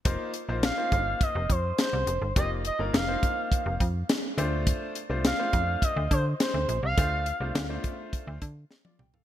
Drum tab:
HH |x-x-x-x-x-x-x-x-|x-x-x-x-x-x-x-x-|x-x-x-x-x-x-x-x-|x-x-x-x-x-x-----|
SD |----o-------o---|----o-------o---|----o-------o---|----o-------o---|
T1 |----------------|----------------|----------------|-------------o--|
T2 |----------------|----------------|----------------|--------------o-|
FT |----------------|----------------|----------------|---------------o|
BD |o-----o-o-o-----|o-----o-o-o-----|o-----o-o-o-----|o-----o-o-o-----|